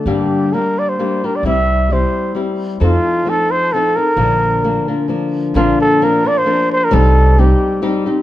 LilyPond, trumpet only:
\new Staff \with { instrumentName = "Trumpet" } { \time 3/4 \key bes \major \tempo 4 = 131 g'4 bes'8 d''16 c''8. bes'16 d''16 | e''4 c''4 r4 | f'4 a'8 c''8 a'8 bes'8~ | bes'2 r4 |
f'8 a'8 bes'8 d''16 c''8. c''16 bes'16 | a'4 g'4 r4 | }